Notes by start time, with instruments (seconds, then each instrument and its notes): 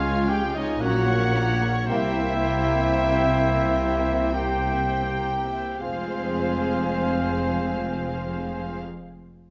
Already playing: tuba C#2, double bass section C#2, cello section C#2, bassoon G#3, clarinet F4, oboe C#5, violin section F5, trumpet section F5, flute G#5
0.02 viola section G#3 F4, violin section C#5 G#5
0.27 viola section F3 G#4, clarinet G4, violin section F5 G5, trumpet section G5
0.54 viola section G#3 F4, clarinet D#4, violin section C#5 D#5 G#5, trumpet section D#5
0.79 double bass section A#1, tuba A#1, cello section A#2, french horn section F#3 C#4, bassoon A#3, viola section C#4 F#4, clarinet F#4, oboe C#5, violin section F#5, flute F#5, trumpet section F#5
0.84 violin section A#4 A#5
1.07 viola section A#3 A#4, violin section C#5 C#6
1.33 viola section C#4 F#4, violin section A#4 A#5
1.60 viola section A#3 A#4, violin section C#5 C#6
1.87 double bass section C2, tuba C2, cello section C3, french horn section G3 A#3, bassoon A#3, viola section C4 G4, clarinet E4, violin section A#4 E5 G5, oboe C5, trumpet section E5, flute G5
2.16 viola section A#3 E4, violin section C5 E5
2.45 viola section C4 G4, violin section A#4 G5
2.75 viola section A#3 E4, violin section C5 E5
3.05 viola section C4 G4, violin section A#4 G5
3.36 viola section A#3 E4, violin section C5 E5
3.67 viola section C4 G4, violin section A#4 G5
4.00 viola section A#3 E4, violin section C5 E5
4.32 bassoon A#3, viola section C4 G4, clarinet G4, violin section A#4 G5, oboe C5, flute G5, trumpet section G5
4.68 viola section A#3 E4, violin section C5 E5
5.06 viola section C4 G4, violin section A#4 G5
5.44 viola section A#3 E4, violin section C5 E5
5.79 tuba F1, double bass section F1, cello section F2, french horn section G#3 C4, bassoon C4, viola section C4 G#4, clarinet F4, violin section C5 F5, oboe C5, trumpet section F5, flute G#5